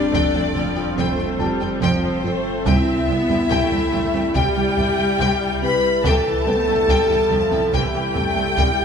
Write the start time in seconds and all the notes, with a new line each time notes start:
Already playing: F1 G3 C4 D4 F4 A4 D5
0.12 F1 F2 F3 A3 G5, taiko
0.34 F2 A3 G5, taiko low
0.55 F1 F2 F3 A3 G5, taiko low
0.76 F2 F4 G5, taiko low
0.97 F1 F2 F3 A3 C4 C5 G5, taiko
1.18 F2 C4 G5
1.39 F1 F2 G3 F4 G5 A5, taiko low
1.60 F2 C4 G5
1.81 F1 F2 F3 C4 C5 G5, taiko
2.24 F1 F2 A3 F4 G5
2.66 C2 C3 G3 C4 E4 E5 G5, taiko
3.08 C2 G3 B3 G5
3.29 C2 G3 G5, taiko low
3.50 C2 C3 A3 G5, taiko
3.72 C2 E3 G5, taiko low
3.93 C2 E3 G5, taiko low
4.14 C2 C4 G5, taiko low
4.35 C2 C3 G3 G4 G5, taiko
4.56 C2 G3 G5
4.77 C2 C4 G5, taiko low
4.98 C2 G3 G5
5.19 C2 C3 G5, taiko
5.62 C2 C4 B4 G5 B5
6.04 C2 C3 E3 G3 E4 A4 E5 G5 A5, taiko
6.46 C2 G3 A3 B3 B4 G5
6.67 C2 G3 G5, taiko low
6.88 C2 C3 G3 G5, taiko
7.09 C2 E3 G5, taiko low
7.30 C2 E3 F3 G5, taiko low
7.52 C2 C4 G5, taiko low
7.72 C2 C3 E3 G4 G5, taiko
7.94 C2 G3 G5
8.15 C2 A3 C4 G5, taiko low
8.36 C2 G3 G5
8.57 C2 C3 G3 G5, taiko